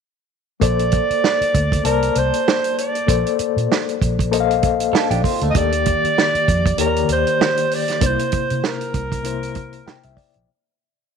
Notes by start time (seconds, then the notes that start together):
0.60 A#1 A#3 A4 C5 D5, kick, closed hi-hat
0.79 closed hi-hat
0.92 kick, closed hi-hat
1.10 muted fingered electric bass stroke, closed hi-hat
1.24 snare
1.41 muted fingered electric bass stroke, closed hi-hat
1.54 D2, kick, closed hi-hat
1.72 kick, closed hi-hat
1.84 C2 A#3 A#4 C5 D5 A5, closed hi-hat
2.02 closed hi-hat
2.15 C2 C5, closed hi-hat
2.33 closed hi-hat
2.48 snare
2.64 closed hi-hat
2.78 D5, closed hi-hat
2.95 closed hi-hat
3.07 A#1 A#3 A4 C5 D5, kick, closed hi-hat
3.27 closed hi-hat
3.39 muted fingered electric bass stroke, closed hi-hat
3.57 A#2, closed hi-hat
3.72 snare
3.89 closed hi-hat
4.02 A#1, kick, closed hi-hat
4.19 kick, closed hi-hat
4.31 A#3 A4 C5 D#5, closed hi-hat
4.40 F5
4.51 closed hi-hat
4.63 kick, closed hi-hat
4.80 closed hi-hat
4.93 D4 A4, muted fingered electric bass stroke, snare
5.11 A#1 D4 G4, closed hi-hat
5.24 C4 F4, kick, open hi-hat
5.41 D2 A3 D4, closed hi-hat
5.51 D#3 D#5
5.55 D#2 A#3 G4 D5, kick, closed hi-hat
5.72 closed hi-hat
5.86 kick, closed hi-hat
6.04 muted fingered electric bass stroke, closed hi-hat
6.18 snare
6.35 muted fingered electric bass stroke, closed hi-hat
6.48 F2, kick, closed hi-hat
6.66 kick, closed hi-hat
6.77 D#2 D#3 A#3 G4 A#4 C#5, closed hi-hat
6.87 D5
6.96 closed hi-hat
7.09 D#2 C5, closed hi-hat
7.27 closed hi-hat
7.41 snare
7.57 closed hi-hat
7.71 D5, open hi-hat
7.88 snare, closed hi-hat
8.00 C2 C3 A#3 D4 C5, kick, closed hi-hat
8.06 E4 C5
8.19 closed hi-hat
8.32 muted fingered electric bass stroke, kick, closed hi-hat
8.50 C3, closed hi-hat
8.64 A#4, snare
8.81 closed hi-hat
8.94 C2, kick, closed hi-hat
9.12 kick, closed hi-hat
9.23 C3 A#3 E4 C5, closed hi-hat
9.43 closed hi-hat
9.55 kick, closed hi-hat
9.73 closed hi-hat
9.87 G5, muted fingered electric bass stroke, snare
10.03 C2 E5, closed hi-hat
10.16 D5, kick, open hi-hat
10.34 A#1, closed hi-hat